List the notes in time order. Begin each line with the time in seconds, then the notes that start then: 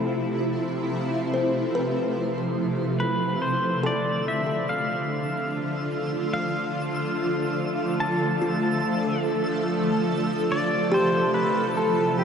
Already playing: C3 F3 A3 E4 A4 C5
1.34 C5
1.75 B4
2.99 D3 B4 E6
3.27 F3
3.42 C5
3.83 A4 D5
3.90 A3
4.09 F4
4.27 A4 E5
4.69 F5
6.34 F5
8.00 A5
8.42 F4
9.66 C3
10.39 E4
10.52 D5
10.92 G4 C5
11.34 B4
11.77 A4
12.19 G4